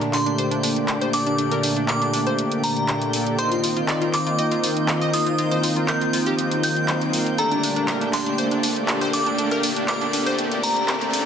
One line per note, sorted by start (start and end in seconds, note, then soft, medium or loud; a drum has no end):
0.00 3.35 A#2 medium
0.00 3.35 D3 medium
0.00 1.11 A3 medium
0.00 1.11 A#3 medium
0.00 1.11 D4 medium
0.00 0.11 D4 medium
0.00 1.11 G4 medium
0.00 3.35 G4 medium
0.00 1.11 D5 medium
0.00 11.26 G5 medium
0.00 11.26 G6 medium
0.00 closed hi-hat soft
0.00 riser medium
0.13 0.24 D4 medium
0.13 1.04 C6 medium
0.13 clap medium
0.13 open hi-hat loud
0.26 0.36 D4 medium
0.26 closed hi-hat soft
0.38 0.49 C5 medium
0.38 closed hi-hat medium
0.51 0.61 D4 medium
0.51 closed hi-hat soft
0.63 0.74 D4 medium
0.63 open hi-hat loud
0.76 closed hi-hat soft
0.88 0.99 D4 medium
0.88 clap loud
0.88 closed hi-hat medium
1.01 1.11 C5 medium
1.01 closed hi-hat soft
1.13 1.36 A#3 medium
1.13 1.36 D4 medium
1.13 1.24 D4 medium
1.13 1.36 G4 medium
1.13 1.36 A4 medium
1.13 1.36 D5 medium
1.13 1.79 D6 medium
1.13 open hi-hat loud
1.27 1.36 D4 medium
1.27 closed hi-hat soft
1.38 3.11 A3 medium
1.38 3.11 A#3 medium
1.38 1.49 D4 medium
1.38 3.11 D4 medium
1.38 3.11 G4 medium
1.38 3.11 D5 medium
1.38 closed hi-hat medium
1.52 1.61 A#4 medium
1.52 closed hi-hat soft
1.63 1.74 D4 medium
1.63 open hi-hat loud
1.76 1.86 D4 medium
1.76 closed hi-hat soft
1.88 1.99 A#4 loud
1.88 2.54 D6 medium
1.88 clap loud
1.88 closed hi-hat medium
2.02 2.11 D4 medium
2.02 closed hi-hat soft
2.14 2.24 D4 medium
2.14 open hi-hat loud
2.27 3.29 C5 medium
2.27 closed hi-hat soft
2.39 closed hi-hat medium
2.52 closed hi-hat soft
2.64 3.29 A#5 medium
2.64 open hi-hat loud
2.77 closed hi-hat soft
2.88 clap loud
2.88 closed hi-hat medium
3.02 closed hi-hat soft
3.13 3.36 A#3 medium
3.13 3.36 D4 medium
3.13 3.36 G4 medium
3.13 3.36 A4 medium
3.13 3.36 D5 medium
3.13 open hi-hat loud
3.27 closed hi-hat soft
3.38 7.35 D#3 medium
3.38 5.11 A#3 medium
3.38 7.35 C4 medium
3.38 5.11 D#4 medium
3.38 5.11 F4 medium
3.38 7.35 F4 medium
3.38 7.35 A#4 medium
3.38 5.11 C5 medium
3.38 3.49 C5 loud
3.38 5.11 D#5 medium
3.38 4.04 C6 loud
3.38 closed hi-hat medium
3.52 3.61 F4 medium
3.52 closed hi-hat soft
3.64 3.74 F4 medium
3.64 open hi-hat loud
3.76 3.86 F4 medium
3.76 closed hi-hat soft
3.88 3.99 D5 medium
3.88 clap loud
3.88 closed hi-hat medium
4.02 4.11 F4 medium
4.02 closed hi-hat soft
4.13 4.24 F4 medium
4.13 5.04 D6 medium
4.13 clap medium
4.13 open hi-hat loud
4.26 4.36 F4 medium
4.26 closed hi-hat soft
4.39 4.49 D#5 medium
4.39 closed hi-hat medium
4.51 4.61 F4 medium
4.51 closed hi-hat soft
4.64 4.74 F4 medium
4.64 open hi-hat loud
4.77 closed hi-hat soft
4.88 4.99 F4 medium
4.88 clap loud
4.88 closed hi-hat medium
5.02 5.11 D#5 medium
5.02 closed hi-hat soft
5.13 5.36 A#3 medium
5.13 5.36 D#4 medium
5.13 5.36 F4 medium
5.13 5.24 F4 medium
5.13 5.36 C5 medium
5.13 5.36 D#5 medium
5.13 5.79 D#6 medium
5.13 open hi-hat loud
5.26 5.36 F4 medium
5.26 closed hi-hat soft
5.38 7.11 A#3 medium
5.38 7.11 D#4 medium
5.38 7.11 F4 medium
5.38 5.49 F4 medium
5.38 7.11 C5 medium
5.38 7.11 D#5 medium
5.38 closed hi-hat medium
5.51 5.61 C5 medium
5.51 closed hi-hat soft
5.63 5.74 F4 medium
5.63 open hi-hat loud
5.76 5.86 F4 medium
5.76 closed hi-hat soft
5.88 5.99 A#4 loud
5.88 6.54 G6 medium
5.88 clap loud
5.88 closed hi-hat medium
6.01 6.11 F4 medium
6.01 closed hi-hat soft
6.13 6.24 F4 medium
6.13 open hi-hat loud
6.26 7.29 G4 medium
6.26 closed hi-hat soft
6.39 closed hi-hat medium
6.51 closed hi-hat soft
6.63 7.29 G6 medium
6.63 open hi-hat loud
6.76 closed hi-hat soft
6.88 clap loud
6.88 closed hi-hat medium
7.02 closed hi-hat soft
7.13 7.26 A#3 medium
7.13 7.26 D#4 medium
7.13 7.26 F4 medium
7.13 7.26 C5 medium
7.13 7.26 F5 medium
7.13 open hi-hat loud
7.26 closed hi-hat soft
7.38 11.26 A#2 medium
7.38 11.26 D3 medium
7.38 9.11 A3 medium
7.38 9.11 A#3 medium
7.38 9.11 D4 medium
7.38 9.11 G4 medium
7.38 11.26 G4 medium
7.38 7.49 A4 loud
7.38 9.11 D5 medium
7.38 8.04 A#5 loud
7.38 closed hi-hat medium
7.51 7.61 D4 medium
7.51 closed hi-hat soft
7.63 7.74 D4 medium
7.63 open hi-hat loud
7.76 7.86 D4 medium
7.76 closed hi-hat soft
7.88 7.99 A#4 loud
7.88 clap loud
7.88 closed hi-hat medium
8.01 8.11 D4 medium
8.01 closed hi-hat soft
8.13 8.24 D4 medium
8.13 9.04 C6 medium
8.13 clap medium
8.13 open hi-hat loud
8.26 8.36 D4 medium
8.26 closed hi-hat soft
8.38 8.49 C5 medium
8.38 closed hi-hat medium
8.51 8.61 D4 medium
8.51 closed hi-hat soft
8.63 8.74 D4 medium
8.63 open hi-hat loud
8.76 closed hi-hat soft
8.88 8.99 D4 medium
8.88 clap loud
8.88 closed hi-hat medium
9.01 9.11 C5 loud
9.01 closed hi-hat soft
9.13 9.36 A#3 medium
9.13 9.36 D4 medium
9.13 9.24 D4 medium
9.13 9.36 G4 medium
9.13 9.36 A4 medium
9.13 9.36 D5 medium
9.13 9.79 D6 medium
9.13 open hi-hat loud
9.26 9.36 D4 medium
9.26 closed hi-hat soft
9.38 11.11 A3 medium
9.38 11.11 A#3 medium
9.38 11.11 D4 medium
9.38 9.49 D4 medium
9.38 11.10 G4 medium
9.38 11.11 D5 medium
9.38 closed hi-hat medium
9.51 9.61 A#4 medium
9.51 closed hi-hat soft
9.63 9.74 D4 medium
9.63 open hi-hat loud
9.76 9.86 D4 medium
9.76 closed hi-hat soft
9.88 9.99 A#4 medium
9.88 10.54 D6 medium
9.88 clap loud
9.88 closed hi-hat medium
10.01 10.11 D4 medium
10.01 closed hi-hat soft
10.13 10.24 D4 medium
10.13 open hi-hat loud
10.26 11.26 C5 medium
10.26 closed hi-hat soft
10.39 closed hi-hat medium
10.52 closed hi-hat soft
10.63 11.26 A#5 loud
10.63 open hi-hat loud
10.76 closed hi-hat soft
10.88 clap loud
10.88 closed hi-hat medium
11.01 closed hi-hat soft
11.13 11.26 A#3 medium
11.13 11.26 D4 medium
11.13 11.26 G4 medium
11.13 11.26 A4 medium
11.13 11.26 D5 medium
11.13 open hi-hat loud